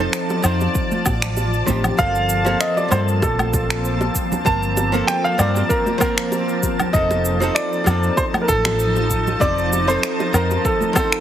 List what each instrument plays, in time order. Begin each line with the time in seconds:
Already playing: hollow-body jazz guitar F3, ambient pad F3 D5 A5
0.00 hollow-body jazz guitar C4 D#4 A4
0.13 finger snap, shaker
0.30 high bongo, shaker
0.42 fingered electric bass F2, hollow-body jazz guitar F3 C4 D#4 C5, low woodblock, shaker
0.61 high bongo, shaker
0.75 kick, shaker
0.91 high conga, shaker
1.06 fingered electric bass A1, kick, high bongo, low woodblock, shaker
1.22 finger snap, shaker
1.37 high bongo, shaker
1.53 shaker
1.66 fingered electric bass A1, hollow-body jazz guitar F3 C4 D#4 G4, kick, high conga, shaker
1.84 high bongo, low conga, low woodblock, shaker
1.97 fingered electric bass G1, hollow-body jazz guitar F3 A#3 C4 A4, ambient pad A#3 C4, grand piano F5, kick, high bongo, shaker
2.15 shaker
2.29 shaker
2.45 hollow-body jazz guitar F3 A#3 C4 A4, high bongo, shaker
2.60 grand piano D#5, finger snap, shaker
2.77 grand piano D5, high bongo, shaker
2.88 fingered electric bass G2, hollow-body jazz guitar F3 A#3, grand piano C5, low woodblock, shaker
2.93 hollow-body jazz guitar C4 A4
3.08 shaker
3.22 fingered electric bass A#1, grand piano A4, kick, high bongo, shaker
3.39 high conga, low woodblock, shaker
3.53 kick, high bongo, shaker
3.70 finger snap, shaker
3.85 shaker
4.01 high bongo, shaker
4.15 kick, shaker
4.32 high bongo, low conga, shaker
4.45 fingered electric bass G1, hollow-body jazz guitar F3 A#3 C4 A#4, grand piano A5, kick, shaker
4.63 shaker
4.77 high bongo, shaker
4.92 hollow-body jazz guitar F3 A#3 C4 A4, shaker
5.07 grand piano G5, finger snap, high bongo, shaker
5.24 grand piano F5, shaker
5.38 fingered electric bass G2, hollow-body jazz guitar F3 A#3 C4 A#4, grand piano D5, low woodblock, shaker
5.56 high bongo, shaker
5.69 grand piano A#4, kick, shaker
5.86 high bongo, high conga, shaker
5.98 hollow-body jazz guitar F3 A#3, grand piano A#4, kick, low woodblock, shaker
6.02 hollow-body jazz guitar C4 A#4
6.18 finger snap, shaker
6.32 high bongo, shaker
6.49 shaker
6.63 kick, high bongo, shaker
6.79 low conga, low woodblock, shaker
6.93 fingered electric bass F1, hollow-body jazz guitar F3 C4 D#4 A4, ambient pad F3 D#4 A5, grand piano D#5, kick, shaker
7.11 high bongo, shaker
7.25 shaker
7.40 hollow-body jazz guitar F3 C4 D#4 A4, high bongo, shaker
7.55 grand piano D5, finger snap, shaker
7.73 shaker
7.84 fingered electric bass F2, hollow-body jazz guitar F3 C4, high bongo, low woodblock, shaker
7.88 hollow-body jazz guitar D#4 A4
8.03 shaker
8.17 grand piano C5, kick, high bongo, shaker
8.34 high conga, low woodblock, shaker
8.41 grand piano A#4
8.48 fingered electric bass A1, grand piano A4, kick, shaker
8.65 finger snap, high bongo, shaker
8.79 shaker
8.96 high bongo, shaker
9.10 kick, shaker
9.27 low conga, shaker
9.40 fingered electric bass F1, hollow-body jazz guitar F3 C4 D#4 C5, grand piano D5, kick, high bongo, shaker
9.58 shaker
9.73 high bongo, shaker
9.87 hollow-body jazz guitar F3 C4 D#4 A4, grand piano C5, shaker
10.03 finger snap, shaker
10.20 high bongo, shaker
10.33 fingered electric bass F2, hollow-body jazz guitar F3 C4 D#4 C5, grand piano A#4, low woodblock, shaker
10.51 high bongo, shaker
10.65 grand piano A4, kick, shaker
10.81 high conga, shaker
10.93 hollow-body jazz guitar F3 C4, grand piano A4, kick, high bongo, low woodblock, shaker
10.97 hollow-body jazz guitar D#4 C5
11.12 finger snap, shaker